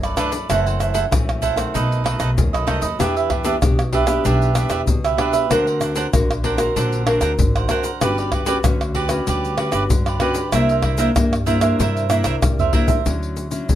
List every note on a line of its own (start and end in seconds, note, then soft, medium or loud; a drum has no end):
0.00 0.13 G1 medium
0.00 0.46 F#2 medium
0.00 0.17 D5 medium
0.00 pandeiro soft
0.00 tamborim medium
0.00 shaker soft
0.04 0.16 A4 soft
0.04 0.17 B4 soft
0.17 0.36 E3 medium
0.17 0.36 A3 medium
0.17 0.32 D4 medium
0.17 0.36 D4 medium
0.17 0.32 A4 medium
0.17 0.31 B4 medium
0.17 0.31 D5 medium
0.17 pandeiro medium
0.17 tamborim medium
0.17 shaker medium
0.32 0.48 A4 soft
0.32 0.47 B4 soft
0.32 0.47 D5 soft
0.32 pandeiro medium
0.32 shaker medium
0.49 1.03 F#1 medium
0.49 1.09 F#2 medium
0.49 1.07 E3 medium
0.49 1.07 A3 medium
0.49 1.07 C4 medium
0.49 0.64 E4 medium
0.49 0.64 A4 medium
0.49 0.64 C5 medium
0.49 0.65 F#5 medium
0.49 pandeiro medium
0.49 tamborim medium
0.49 shaker medium
0.49 surdo medium
0.66 0.79 A4 soft
0.66 0.80 C5 soft
0.66 0.80 F#5 soft
0.66 pandeiro soft
0.66 shaker soft
0.80 0.93 E4 soft
0.80 0.93 A4 soft
0.80 0.94 C5 soft
0.80 0.94 F#5 soft
0.80 pandeiro soft
0.80 tamborim medium
0.80 shaker medium
0.94 1.04 E4 medium
0.94 1.04 A4 medium
0.94 1.04 C5 medium
0.94 1.05 F#5 medium
0.94 pandeiro medium
0.94 shaker medium
1.11 1.65 A#1 medium
1.11 1.71 F#2 medium
1.11 1.41 E3 soft
1.11 1.41 A3 medium
1.11 1.41 C4 medium
1.11 pandeiro medium
1.11 tamborim medium
1.11 shaker medium
1.11 surdo loud
1.29 pandeiro soft
1.29 tamborim medium
1.29 shaker soft
1.42 1.57 E4 medium
1.42 1.57 A4 medium
1.42 1.56 C5 medium
1.42 1.55 F#5 medium
1.42 pandeiro medium
1.42 shaker medium
1.56 1.99 D#3 medium
1.56 2.00 A3 medium
1.56 2.00 C4 medium
1.56 1.73 A4 soft
1.56 1.73 C5 soft
1.56 1.72 F#5 medium
1.56 pandeiro medium
1.56 tamborim medium
1.56 shaker medium
1.74 2.15 B1 loud
1.74 2.34 B2 medium
1.74 2.03 D#4 medium
1.74 2.04 A4 medium
1.74 2.04 B4 medium
1.74 2.04 D#5 medium
1.74 pandeiro medium
1.74 shaker medium
1.74 surdo medium
1.92 pandeiro soft
1.92 shaker soft
2.04 2.63 D#3 medium
2.04 2.63 A3 medium
2.04 2.63 C4 medium
2.04 2.18 D#4 medium
2.04 2.19 A4 soft
2.04 2.19 B4 medium
2.04 2.19 D#5 soft
2.04 pandeiro medium
2.04 tamborim medium
2.19 2.39 B1 medium
2.19 2.29 D#4 medium
2.19 2.30 A4 medium
2.19 2.30 B4 medium
2.19 2.30 D#5 medium
2.19 pandeiro medium
2.19 tamborim medium
2.19 shaker medium
2.37 2.51 D#2 medium
2.37 2.97 F#2 medium
2.37 pandeiro medium
2.37 shaker medium
2.37 surdo medium
2.53 2.67 B1 medium
2.53 2.66 A4 soft
2.53 2.67 B4 soft
2.53 2.67 D#5 medium
2.53 pandeiro soft
2.53 tamborim medium
2.53 shaker soft
2.67 2.82 C2 medium
2.67 2.86 D#3 medium
2.67 2.86 A3 medium
2.67 2.86 C4 medium
2.67 2.82 D#4 medium
2.67 2.82 A4 medium
2.67 2.82 B4 medium
2.67 2.81 D#5 medium
2.67 pandeiro medium
2.67 tamborim medium
2.82 2.97 D#2 medium
2.82 2.98 A4 soft
2.82 2.98 B4 soft
2.82 2.98 D#5 medium
2.82 pandeiro medium
2.82 shaker medium
2.99 3.53 E2 medium
2.99 3.59 E3 medium
2.99 3.29 B3 medium
2.99 3.29 D4 medium
2.99 3.14 D4 medium
2.99 3.29 G4 medium
2.99 3.15 G4 medium
2.99 3.15 B4 medium
2.99 3.15 E5 medium
2.99 pandeiro medium
2.99 tamborim medium
2.99 shaker medium
2.99 surdo medium
3.16 3.29 G4 soft
3.16 3.29 B4 soft
3.16 3.30 E5 soft
3.16 pandeiro soft
3.16 shaker soft
3.30 3.44 D4 soft
3.30 3.44 G4 soft
3.30 3.44 B4 soft
3.30 3.44 E5 soft
3.30 pandeiro medium
3.30 tamborim medium
3.30 surdo medium
3.44 3.56 B3 medium
3.44 3.55 D4 medium
3.44 3.57 D4 medium
3.44 3.55 G4 medium
3.44 3.57 G4 medium
3.44 3.55 B4 medium
3.44 3.55 E5 medium
3.44 pandeiro medium
3.44 shaker medium
3.62 4.16 B1 medium
3.62 4.22 B2 medium
3.62 3.81 B3 medium
3.62 3.81 D4 soft
3.62 3.81 G4 medium
3.62 pandeiro medium
3.62 tamborim medium
3.62 shaker medium
3.62 surdo loud
3.79 pandeiro soft
3.79 tamborim medium
3.79 shaker soft
3.92 4.04 B3 medium
3.92 4.04 D4 medium
3.92 4.08 D4 medium
3.92 4.04 G4 medium
3.92 4.07 G4 medium
3.92 4.07 B4 medium
3.92 4.06 E5 medium
3.92 pandeiro medium
4.07 4.50 B3 medium
4.07 4.51 D4 medium
4.07 4.51 G4 medium
4.07 4.24 G4 soft
4.07 4.23 B4 soft
4.07 4.23 E5 soft
4.07 pandeiro medium
4.07 tamborim medium
4.07 shaker medium
4.25 4.65 B1 loud
4.25 4.85 E3 medium
4.25 4.54 D4 medium
4.25 4.55 G4 medium
4.25 4.55 B4 medium
4.25 4.56 E5 medium
4.25 pandeiro medium
4.25 shaker medium
4.25 surdo medium
4.42 pandeiro soft
4.42 shaker soft
4.55 4.96 B3 medium
4.55 4.69 D4 soft
4.55 4.97 D4 medium
4.55 4.97 G4 medium
4.55 4.70 G4 soft
4.55 4.70 B4 medium
4.55 4.70 E5 medium
4.55 pandeiro medium
4.55 tamborim medium
4.55 shaker medium
4.70 4.88 E2 medium
4.70 4.80 D4 medium
4.70 4.80 G4 medium
4.70 4.81 B4 medium
4.70 4.81 E5 medium
4.70 pandeiro medium
4.70 tamborim medium
4.70 shaker medium
4.87 5.15 C#2 medium
4.87 5.47 B2 medium
4.87 pandeiro medium
4.87 shaker medium
4.87 surdo medium
5.04 5.17 G4 soft
5.04 5.18 B4 soft
5.04 5.18 E5 soft
5.04 pandeiro soft
5.04 tamborim medium
5.04 shaker soft
5.17 5.45 B3 medium
5.17 5.45 D4 medium
5.17 5.33 D4 medium
5.17 5.45 G4 medium
5.17 5.33 G4 medium
5.17 5.32 B4 medium
5.17 5.32 E5 medium
5.17 pandeiro medium
5.17 tamborim medium
5.33 5.49 G4 soft
5.33 5.49 B4 soft
5.33 5.48 E5 soft
5.33 pandeiro medium
5.33 shaker medium
5.50 6.04 D2 loud
5.50 6.10 D3 medium
5.50 6.08 C4 soft
5.50 5.65 D4 medium
5.50 6.08 F#4 medium
5.50 6.09 A#4 medium
5.50 5.65 A#4 medium
5.50 5.66 C5 medium
5.50 5.66 F#5 medium
5.50 pandeiro medium
5.50 tamborim medium
5.50 shaker medium
5.50 surdo medium
5.67 5.81 A#4 soft
5.67 5.82 C5 soft
5.67 5.81 F#5 soft
5.67 pandeiro soft
5.67 shaker soft
5.81 5.95 D4 soft
5.81 5.95 A#4 soft
5.81 5.95 C5 soft
5.81 5.96 F#5 soft
5.81 pandeiro medium
5.81 tamborim medium
5.81 shaker medium
5.96 6.06 D4 medium
5.96 6.06 A#4 medium
5.96 6.06 C5 medium
5.96 6.06 F#5 medium
5.96 pandeiro medium
5.96 shaker medium
6.13 6.67 A#1 medium
6.13 6.73 D3 medium
6.13 6.32 C4 medium
6.13 6.32 F#4 medium
6.13 6.32 A#4 medium
6.13 pandeiro medium
6.13 tamborim medium
6.13 shaker medium
6.13 surdo loud
6.31 pandeiro soft
6.31 tamborim medium
6.31 shaker soft
6.43 6.55 C4 medium
6.43 6.59 D4 medium
6.43 6.55 F#4 medium
6.43 6.55 A#4 medium
6.43 6.59 A#4 medium
6.43 6.58 C5 medium
6.43 6.58 F#5 medium
6.43 pandeiro medium
6.57 7.01 C4 medium
6.57 7.01 F#4 medium
6.57 7.01 A#4 medium
6.57 6.75 A#4 soft
6.57 6.75 C5 soft
6.57 6.74 F#5 soft
6.57 pandeiro medium
6.57 tamborim medium
6.57 shaker medium
6.76 7.16 A#1 loud
6.76 7.36 D3 medium
6.76 7.06 D4 medium
6.76 7.06 A#4 medium
6.76 7.07 C5 medium
6.76 7.07 F#5 medium
6.76 pandeiro medium
6.76 shaker medium
6.76 surdo medium
6.92 pandeiro soft
6.92 shaker soft
7.06 7.65 C4 medium
7.06 7.20 D4 medium
7.06 7.65 F#4 medium
7.06 7.65 A#4 medium
7.06 7.20 A#4 soft
7.06 7.21 C5 medium
7.06 7.21 F#5 medium
7.06 pandeiro medium
7.06 tamborim medium
7.21 7.41 D2 medium
7.21 7.31 D4 medium
7.21 7.32 A#4 medium
7.21 7.32 C5 medium
7.21 7.32 F#5 medium
7.21 pandeiro medium
7.21 tamborim medium
7.21 shaker medium
7.39 7.66 G#1 loud
7.39 7.99 D3 soft
7.39 pandeiro medium
7.39 shaker medium
7.39 surdo loud
7.56 7.69 A#4 soft
7.56 7.70 C5 soft
7.56 7.70 F#5 soft
7.56 pandeiro soft
7.56 tamborim medium
7.56 shaker soft
7.69 7.88 C4 medium
7.69 7.85 D4 medium
7.69 7.89 F#4 medium
7.69 7.89 A#4 medium
7.69 7.84 A#4 medium
7.69 7.84 C5 medium
7.69 7.83 F#5 medium
7.69 pandeiro medium
7.69 tamborim medium
7.69 shaker medium
7.84 8.00 A#4 soft
7.84 8.00 C5 soft
7.84 8.00 F#5 soft
7.84 pandeiro medium
7.84 shaker medium
8.01 8.56 G1 medium
8.01 8.62 G3 medium
8.01 8.31 C#4 medium
8.01 8.16 F#4 medium
8.01 8.32 F#4 medium
8.01 8.17 G4 medium
8.01 8.32 B4 medium
8.01 8.17 B4 medium
8.01 8.17 D5 medium
8.01 pandeiro medium
8.01 tamborim medium
8.01 shaker medium
8.01 surdo medium
8.18 8.32 G4 soft
8.18 8.32 B4 soft
8.18 8.33 D5 soft
8.18 pandeiro soft
8.18 shaker soft
8.32 8.45 F#4 soft
8.32 8.46 G4 soft
8.32 8.46 B4 medium
8.32 8.46 D5 medium
8.32 pandeiro medium
8.32 tamborim medium
8.32 surdo medium
8.46 8.59 C#4 medium
8.46 8.57 F#4 medium
8.46 8.59 F#4 medium
8.46 8.57 G4 medium
8.46 8.57 B4 medium
8.46 8.59 B4 medium
8.46 8.57 D5 medium
8.46 pandeiro medium
8.46 shaker medium
8.64 9.18 D2 loud
8.64 9.24 D3 medium
8.64 9.07 C#4 medium
8.64 9.07 F#4 medium
8.64 9.07 B4 medium
8.64 pandeiro medium
8.64 tamborim medium
8.64 shaker medium
8.64 surdo loud
8.81 pandeiro soft
8.81 tamborim medium
8.81 shaker soft
8.95 9.10 F#4 medium
8.95 9.10 G4 medium
8.95 9.09 B4 medium
8.95 9.09 D5 medium
8.95 pandeiro medium
9.09 9.53 C#4 medium
9.09 9.53 F#4 medium
9.09 9.26 G4 soft
9.09 9.53 B4 medium
9.09 9.26 B4 soft
9.09 9.26 D5 soft
9.09 pandeiro medium
9.09 tamborim medium
9.09 shaker medium
9.27 9.68 D2 loud
9.27 9.87 G3 medium
9.27 9.57 F#4 medium
9.27 9.58 G4 medium
9.27 9.58 B4 medium
9.27 9.58 D5 medium
9.27 pandeiro medium
9.27 shaker medium
9.27 surdo soft
9.45 pandeiro soft
9.45 shaker soft
9.58 10.17 C#4 medium
9.58 9.71 F#4 medium
9.58 10.17 F#4 medium
9.58 9.72 G4 soft
9.58 10.17 B4 medium
9.58 9.72 B4 medium
9.58 9.72 D5 medium
9.58 pandeiro medium
9.58 tamborim medium
9.72 9.92 G1 medium
9.72 9.83 F#4 medium
9.72 9.83 G4 medium
9.72 9.83 B4 medium
9.72 9.83 D5 medium
9.72 pandeiro medium
9.72 tamborim medium
9.72 shaker medium
9.90 10.17 G2 medium
9.90 10.50 D3 medium
9.90 pandeiro medium
9.90 shaker medium
9.90 surdo loud
10.06 10.20 G4 soft
10.06 10.21 B4 soft
10.06 10.21 D5 medium
10.06 pandeiro soft
10.06 tamborim medium
10.06 shaker soft
10.20 10.40 C#4 medium
10.20 10.36 F#4 medium
10.20 10.40 F#4 medium
10.20 10.36 G4 medium
10.20 10.40 B4 medium
10.20 10.35 B4 medium
10.20 10.34 D5 medium
10.20 pandeiro medium
10.20 tamborim medium
10.35 10.52 G4 soft
10.35 10.52 B4 soft
10.35 10.51 D5 soft
10.35 pandeiro medium
10.35 shaker medium
10.52 11.07 C2 loud
10.52 11.13 C3 medium
10.52 10.96 A#3 medium
10.52 10.96 D4 medium
10.52 10.68 E4 medium
10.52 10.96 E4 medium
10.52 10.68 A#4 medium
10.52 10.69 C5 medium
10.52 10.69 E5 medium
10.52 pandeiro medium
10.52 tamborim medium
10.52 shaker medium
10.52 surdo medium
10.69 10.83 A#4 soft
10.69 10.84 C5 soft
10.69 10.84 E5 soft
10.69 pandeiro soft
10.69 shaker soft
10.82 10.97 E4 soft
10.82 10.98 A#4 soft
10.82 10.98 C5 medium
10.82 10.98 E5 medium
10.82 pandeiro medium
10.82 tamborim medium
10.82 surdo medium
10.98 11.10 A#3 medium
10.98 11.10 D4 medium
10.98 11.09 E4 medium
10.98 11.11 E4 medium
10.98 11.09 A#4 medium
10.98 11.09 C5 medium
10.98 11.09 E5 medium
10.98 pandeiro medium
10.98 shaker medium
11.16 11.70 G2 medium
11.16 11.76 G3 medium
11.16 11.35 A#3 medium
11.16 11.35 D4 medium
11.16 11.35 E4 medium
11.16 pandeiro medium
11.16 tamborim medium
11.16 shaker medium
11.16 surdo medium
11.33 pandeiro soft
11.33 tamborim medium
11.33 shaker soft
11.46 11.58 A#3 medium
11.46 11.58 D4 medium
11.46 11.62 E4 medium
11.46 11.58 E4 medium
11.46 11.62 A#4 medium
11.46 11.61 C5 medium
11.46 11.60 E5 medium
11.46 pandeiro medium
11.46 shaker medium
11.61 12.05 A#3 medium
11.61 12.05 D4 medium
11.61 12.05 E4 medium
11.61 11.78 A#4 soft
11.61 11.78 C5 soft
11.61 11.77 E5 medium
11.61 pandeiro medium
11.61 tamborim medium
11.61 shaker medium
11.79 12.20 G2 loud
11.79 12.39 C3 medium
11.79 12.09 E4 medium
11.79 12.10 A#4 medium
11.79 12.10 C5 medium
11.79 12.11 E5 medium
11.79 pandeiro medium
11.79 shaker medium
11.79 surdo medium
11.97 pandeiro soft
11.97 shaker soft
12.10 12.69 A#3 medium
12.10 12.69 D4 medium
12.10 12.24 E4 medium
12.10 12.69 E4 medium
12.10 12.24 A#4 medium
12.10 12.24 C5 medium
12.10 12.25 E5 medium
12.10 pandeiro medium
12.10 tamborim loud
12.10 shaker medium
12.24 12.39 C2 medium
12.24 12.35 E4 medium
12.24 12.35 A#4 medium
12.24 12.35 C5 medium
12.24 12.35 E5 medium
12.24 pandeiro medium
12.24 tamborim medium
12.24 shaker medium
12.42 12.70 C2 loud
12.42 13.02 G3 medium
12.42 pandeiro medium
12.42 tamborim medium
12.42 shaker medium
12.42 surdo loud
12.59 12.73 A#4 soft
12.59 12.73 C5 soft
12.59 12.73 E5 soft
12.59 surdo medium
12.59 pandeiro soft
12.59 shaker soft
12.73 13.00 A#3 soft
12.73 13.00 D4 medium
12.73 12.88 E4 medium
12.73 13.00 E4 medium
12.73 12.88 A#4 medium
12.73 12.87 C5 medium
12.73 12.86 E5 medium
12.73 pandeiro medium
12.73 surdo loud
12.88 13.04 A#4 soft
12.88 13.04 C5 soft
12.88 13.03 E5 soft
12.88 pandeiro medium
12.88 shaker medium
12.88 surdo medium
13.05 13.59 D2 medium
13.05 13.66 D3 medium
13.05 13.48 F#3 medium
13.05 13.48 C#4 medium
13.05 13.48 E4 medium
13.05 pandeiro medium
13.05 shaker medium
13.05 surdo medium
13.23 pandeiro soft
13.23 shaker soft
13.37 pandeiro medium
13.37 shaker medium
13.51 13.75 F#3 soft
13.51 13.75 C#4 medium
13.51 13.75 E4 medium
13.51 pandeiro medium
13.51 shaker medium
13.69 13.75 D2 medium
13.69 13.75 A2 soft
13.69 pandeiro medium
13.69 shaker medium
13.69 surdo loud